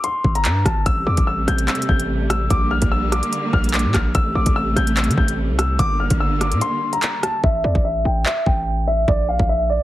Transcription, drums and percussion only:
0.04 closed hi-hat
0.24 kick
0.35 closed hi-hat
0.45 clap, closed hi-hat
0.65 kick, cross-stick, closed hi-hat
0.86 kick, closed hi-hat
1.17 kick, closed hi-hat
1.48 cross-stick, closed hi-hat
1.58 closed hi-hat
1.68 clap, closed hi-hat
1.75 closed hi-hat
1.82 closed hi-hat
1.89 kick
2.00 closed hi-hat
2.30 cross-stick, closed hi-hat
2.50 kick, closed hi-hat
2.82 kick, closed hi-hat
3.12 cross-stick, closed hi-hat
3.23 closed hi-hat
3.33 closed hi-hat
3.53 kick
3.64 closed hi-hat
3.69 closed hi-hat
3.74 clap, closed hi-hat
3.79 closed hi-hat
3.94 kick, cross-stick, clap, closed hi-hat
4.15 kick, closed hi-hat
4.46 kick, closed hi-hat
4.76 cross-stick, closed hi-hat
4.87 closed hi-hat
4.97 clap, closed hi-hat
5.04 closed hi-hat
5.11 closed hi-hat
5.18 kick
5.28 closed hi-hat
5.59 cross-stick, closed hi-hat
5.79 kick, closed hi-hat
6.10 kick, closed hi-hat
6.41 cross-stick, closed hi-hat
6.52 closed hi-hat
6.61 closed hi-hat
6.93 closed hi-hat
7.02 clap, closed hi-hat
7.23 cross-stick, closed hi-hat
7.44 kick
7.75 kick
8.26 clap
8.46 kick
9.08 kick
9.39 kick

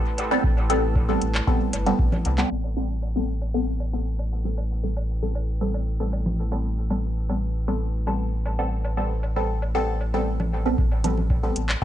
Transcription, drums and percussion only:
0.18 closed hi-hat, low woodblock
0.44 kick
0.57 low woodblock
0.70 closed hi-hat
0.96 kick, low woodblock
1.22 closed hi-hat
1.35 clap, low woodblock
1.47 kick
1.73 closed hi-hat, low woodblock
1.86 closed hi-hat
1.99 kick
2.12 low conga, low woodblock
2.25 closed hi-hat
2.38 clap
2.64 low woodblock
3.02 low woodblock
3.42 low woodblock
3.80 low woodblock
4.19 low woodblock
4.58 low woodblock
4.97 low woodblock
5.35 low woodblock
5.74 low woodblock
6.13 low woodblock
6.26 low conga
6.52 low woodblock
6.90 low woodblock
7.29 low woodblock
7.68 low woodblock
8.07 low woodblock
8.46 low woodblock
8.85 low woodblock
9.23 low woodblock
9.62 low woodblock
10.01 low woodblock
10.40 low conga, low woodblock
10.78 kick
10.92 low woodblock
11.04 closed hi-hat, low conga
11.17 low conga
11.30 kick, low woodblock
11.56 closed hi-hat
11.69 clap, low woodblock

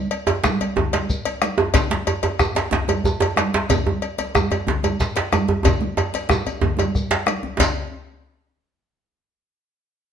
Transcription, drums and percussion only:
0.11 cowbell
0.27 cowbell, djembe slap, djembe tone, high conga
0.44 bombo rim, bombo low, djembe slap, high conga, shekere
0.60 cowbell, djembe tone
0.76 djembe slap, djembe tone, low conga, djembe bass
0.93 cowbell, djembe slap, high conga
1.10 bombo low, high conga, shekere
1.25 cowbell, djembe slap, high conga
1.42 bombo rim, cowbell, high conga, shekere
1.58 djembe slap, djembe tone
1.74 bombo low, cowbell, djembe slap, djembe bass, low conga, shekere
1.91 djembe slap, high conga
2.07 cowbell, high conga, djembe tone
2.23 cowbell, djembe slap, djembe tone, high conga
2.39 bombo rim, bombo low, djembe tone, shekere
2.55 cowbell, djembe slap, djembe tone
2.71 djembe slap, low conga, djembe bass
2.88 cowbell, djembe slap, high conga, djembe tone
3.03 bombo low, high conga, djembe tone, shekere
3.20 cowbell, djembe slap, djembe tone, high conga
3.37 bombo rim, cowbell, djembe slap, high conga
3.54 djembe slap, djembe tone
3.69 bombo low, cowbell, djembe tone, low conga, djembe bass, shekere
3.86 high conga, djembe tone
4.02 cowbell, high conga
4.18 cowbell, djembe slap, high conga
4.35 bombo rim, bombo low, high conga, djembe tone, shekere
4.51 cowbell, djembe tone
4.67 djembe slap, low conga, djembe bass
4.83 cowbell, djembe slap, high conga, djembe tone
5.00 bombo low, djembe slap, high conga, shekere
5.16 cowbell, djembe slap, high conga
5.32 bombo rim, cowbell, high conga, djembe tone, shekere
5.48 djembe slap, djembe tone
5.64 bombo rim, bombo low, cowbell, djembe tone, djembe bass, low conga, shekere
5.81 bombo rim, high conga
5.97 cowbell, djembe slap, djembe tone
6.13 cowbell, djembe slap, high conga, shekere
6.29 bombo rim, bombo low, high conga, djembe tone, shekere
6.46 bombo rim, cowbell, djembe slap, djembe tone, shekere
6.61 djembe slap, djembe tone, low conga, djembe bass
6.77 cowbell, high conga, djembe tone, shekere
6.95 bombo rim, bombo low, shekere
7.11 bombo rim, cowbell, djembe slap, high conga
7.26 bombo rim, cowbell, djembe slap, high conga
7.43 djembe tone, high conga
7.58 bombo low, cowbell, djembe slap, low conga, djembe bass, shekere

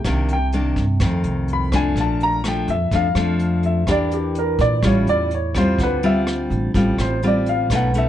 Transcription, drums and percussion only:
0.04 kick, cross-stick, closed hi-hat
0.29 closed hi-hat
0.52 closed hi-hat
0.76 kick, closed hi-hat
1.00 kick, cross-stick, closed hi-hat
1.24 closed hi-hat
1.48 closed hi-hat
1.72 kick, cross-stick, closed hi-hat
1.96 kick, closed hi-hat
2.20 closed hi-hat
2.44 cross-stick, closed hi-hat
2.68 closed hi-hat
2.91 kick, closed hi-hat
3.15 cross-stick, closed hi-hat
3.39 closed hi-hat
3.63 closed hi-hat
3.87 kick, cross-stick, closed hi-hat
4.11 closed hi-hat
4.35 closed hi-hat
4.59 kick, closed hi-hat
4.83 kick, cross-stick, closed hi-hat
5.07 closed hi-hat
5.31 closed hi-hat
5.55 kick, cross-stick, closed hi-hat
5.79 kick, closed hi-hat
6.03 closed hi-hat
6.27 cross-stick, closed hi-hat
6.51 closed hi-hat
6.74 kick, closed hi-hat
6.98 cross-stick, closed hi-hat
7.23 closed hi-hat
7.46 closed hi-hat
7.70 kick, cross-stick, closed hi-hat
7.94 closed hi-hat

